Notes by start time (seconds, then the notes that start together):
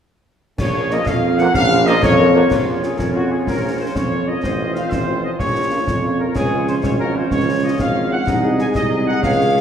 0.58 A#1 C#5, concert bass drum, snare, crash
0.75 A#3 F4 A#4
0.90 F3 A#3 F4 A#4 D#5, snare
1.06 F2 F4 F5, concert bass drum, snare
1.23 A#3 F4 A#4
1.38 F3 A#3 F4 A#4 F#5, snare
1.54 A#1 C#4 F5, concert bass drum, snare
1.70 A#3 F4 A#4, snare
1.85 F3 A#3 F4 A#4 D#5, snare
2.03 F2 F4 C#5, concert bass drum, snare
2.17 A#3 F4 A#4
2.33 F3 A#3 F4 F#4 A#4
2.50 A#1 F3 C#4 F4 C#5, concert bass drum, snare, crash
2.66 A#3 C#4 F4
2.83 A#3 C#4 F4 G#4, snare
2.98 F2 A#4, concert bass drum, snare
3.14 A#3 C#4 F4 F#4
3.30 A#3 C#4 F4 G#4
3.47 A#1 A#4, concert bass drum, snare
3.62 A#3 C#4 F4
3.78 A#3 C#4 F4 C5
3.95 F2 C#5, concert bass drum, snare
4.11 A#3 C#4 F4
4.27 A#3 C#4 F4 D#5
4.43 A1 F3 C4 F4 C5, concert bass drum, snare
4.60 C4 F4
4.74 C4 F4 F5, snare
4.91 A1 C5, concert bass drum, snare
5.07 C4 F4
5.23 C4 F4 D#5
5.39 A#1 C#4 C#5, concert bass drum, snare
5.56 A#3 C#4 F4
5.72 A#3 C#4 F4
5.87 F2, concert bass drum, snare
6.04 A#3 C#4 F4
6.19 A#3 C#4 F4 A#4
6.35 C#2 F3 C#4 F4 G#4 C#5, concert bass drum, snare, crash
6.51 G#3 C#4 F4
6.67 G#3 C#4 F4 C5, snare
6.83 G#1 C#5, concert bass drum, snare
6.99 G#3 C#4 F4 A#4
7.15 G#3 C#4 F4 C5
7.31 C#2 C#5, concert bass drum, snare
7.46 G#3 C#4 F4
7.63 G#3 C#4 F4 D#5
7.79 G#1 F5, concert bass drum, snare
7.95 G#3 C#4 F4
8.11 G#3 C#4 F4 F#5
8.26 C2 G#3 D#4 G#4 D#5, concert bass drum, snare
8.43 G#3 D#4 G#4
8.58 G#3 D#4 G#4 G#5, snare
8.75 C2 D#5, concert bass drum, snare
8.90 G#3 D#4 G#4
9.07 G#3 D#4 G#4 F#5
9.22 C#2 C#4 C#5 F5, concert bass drum, snare
9.38 G#3 C#4 G#4
9.55 G#3 C#4 G#4